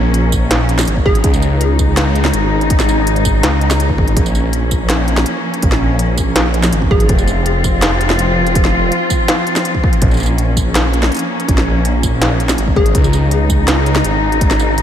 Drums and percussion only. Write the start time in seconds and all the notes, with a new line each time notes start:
0.14 closed hi-hat
0.32 kick, tambourine
0.51 snare, closed hi-hat
0.69 closed hi-hat
0.79 snare, tambourine
0.81 tambourine
0.85 closed hi-hat, tambourine
0.97 kick
1.06 kick
1.15 closed hi-hat
1.24 kick, closed hi-hat
1.34 tambourine
1.42 tambourine
1.61 closed hi-hat
1.79 kick, tambourine
1.97 snare, closed hi-hat
2.15 closed hi-hat
2.25 snare
2.33 closed hi-hat
2.61 closed hi-hat
2.70 kick, closed hi-hat
2.80 snare, tambourine
2.89 tambourine
3.07 closed hi-hat
3.16 closed hi-hat
3.25 kick, tambourine
3.43 snare, closed hi-hat
3.61 closed hi-hat
3.71 snare, tambourine
3.80 closed hi-hat
3.89 kick
3.98 kick
4.08 closed hi-hat
4.17 kick, closed hi-hat
4.26 tambourine
4.35 tambourine
4.53 closed hi-hat
4.71 kick, tambourine
4.90 snare, closed hi-hat
5.08 closed hi-hat
5.17 snare
5.26 closed hi-hat
5.54 closed hi-hat
5.62 kick, closed hi-hat
5.72 snare
5.99 closed hi-hat
6.17 kick, tambourine
6.36 snare, closed hi-hat
6.54 closed hi-hat
6.63 snare, tambourine
6.72 closed hi-hat
6.82 kick
6.91 kick
7.00 closed hi-hat
7.09 kick, closed hi-hat
7.18 tambourine
7.27 tambourine
7.46 closed hi-hat
7.64 kick, tambourine
7.82 snare, closed hi-hat
8.01 closed hi-hat
8.10 snare
8.19 closed hi-hat
8.47 closed hi-hat
8.55 kick, closed hi-hat
8.65 snare
8.92 closed hi-hat
9.10 kick, tambourine
9.28 snare, closed hi-hat
9.47 closed hi-hat
9.56 snare, tambourine
9.65 closed hi-hat
9.75 kick
9.84 kick
9.93 closed hi-hat
10.02 kick, closed hi-hat
10.11 tambourine
10.14 tambourine
10.17 tambourine
10.20 tambourine
10.23 tambourine
10.26 tambourine
10.38 closed hi-hat
10.57 kick, tambourine
10.75 snare, closed hi-hat
10.94 closed hi-hat
11.03 snare
11.12 closed hi-hat
11.14 closed hi-hat
11.17 closed hi-hat
11.19 closed hi-hat
11.40 closed hi-hat
11.48 kick, closed hi-hat
11.58 snare
11.85 closed hi-hat
12.03 kick, tambourine
12.22 snare, closed hi-hat
12.40 closed hi-hat
12.49 snare, tambourine
12.58 closed hi-hat
12.68 kick
12.76 kick
12.86 closed hi-hat
12.95 kick, closed hi-hat
13.04 tambourine
13.13 tambourine
13.31 closed hi-hat
13.50 kick, tambourine
13.68 snare, closed hi-hat
13.86 closed hi-hat
13.96 snare
14.04 closed hi-hat
14.32 closed hi-hat
14.41 kick, closed hi-hat
14.51 snare, tambourine
14.59 tambourine
14.78 closed hi-hat